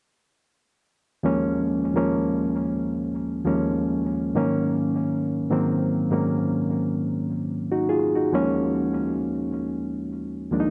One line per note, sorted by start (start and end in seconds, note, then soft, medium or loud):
1.23 1.66 D#2 medium
1.23 1.66 F3 medium
1.23 1.66 G#3 medium
1.23 1.67 A#3 medium
1.23 1.67 C#4 loud
1.95 2.88 D#2 medium
1.95 2.89 F3 medium
1.95 2.89 G#3 medium
1.95 2.89 A#3 medium
1.95 2.90 C#4 medium
3.45 4.28 D#2 medium
3.45 4.28 F3 medium
3.45 4.29 G#3 medium
3.45 4.29 A#3 medium
3.45 4.29 C#4 medium
4.35 5.23 G#2 medium
4.35 5.23 D#3 medium
4.35 5.24 F#3 medium
4.35 5.24 A#3 medium
4.35 5.24 C#4 medium
5.50 5.90 G#2 medium
5.50 5.90 D#3 medium
5.50 5.90 F#3 medium
5.50 5.90 A#3 medium
5.50 5.91 C4 medium
6.11 6.67 G#2 medium
6.11 6.67 D#3 medium
6.11 6.67 F#3 medium
6.11 6.68 A#3 medium
6.11 6.68 C#4 medium
7.72 7.88 D#4 medium
7.72 7.87 F#4 medium
7.89 8.15 F4 medium
7.89 8.14 G#4 medium
8.15 8.57 D#4 soft
8.15 8.57 F#4 medium
8.32 9.44 D#2 medium
8.32 9.44 F3 medium
8.32 9.44 G#3 medium
8.32 9.45 A#3 medium
8.32 9.45 C#4 loud
10.51 10.70 D#2 medium
10.51 10.70 F3 medium
10.51 10.70 G#3 medium
10.51 10.70 A#3 medium
10.51 10.61 D4 medium
10.60 10.70 D#4 medium